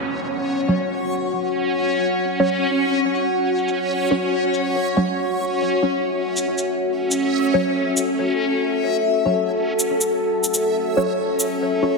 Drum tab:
SH |--x-------x-----|-----------x-x--|-xx-------x-----|-----------x-x--|

SH |--x-------x-----|-----------x-x--|-xx-------x-----|